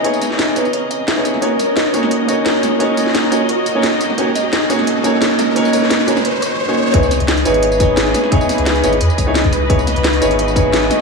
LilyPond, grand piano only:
\new Staff \with { instrumentName = "Grand piano" } { \time 4/4 \key cis \dorian \tempo 4 = 174 <b dis' e' gis' cis''>4. <b dis' e' gis' cis''>16 r4. <b dis' e' gis' cis''>8. | <ais cis' dis' fis' cis''>16 r4 r16 <ais cis' dis' fis' cis''>4 <ais cis' dis' fis' cis''>4. | <ais cis' dis' fis' cis''>4. <ais cis' dis' fis' cis''>16 r4 <ais cis' dis' fis' cis''>16 r4 | <ais cis' dis' fis' cis''>16 r4 r16 <ais cis' dis' fis' cis''>4 <ais cis' dis' fis' cis''>4. |
<ais cis' dis' fis' cis''>4. <ais cis' dis' fis' cis''>16 r4. <ais cis' dis' fis' cis''>8. | <b dis' e' gis' cis''>16 r4 r16 <b dis' e' gis' cis''>4 <b dis' e' gis' cis''>4. | <b dis' e' gis' cis''>4. <b dis' e' gis' cis''>16 r4 <b dis' e' gis' cis''>16 r4 | <b dis' e' gis' cis''>16 r4 r16 <b dis' e' gis' cis''>4 <b dis' e' gis' cis''>4. | }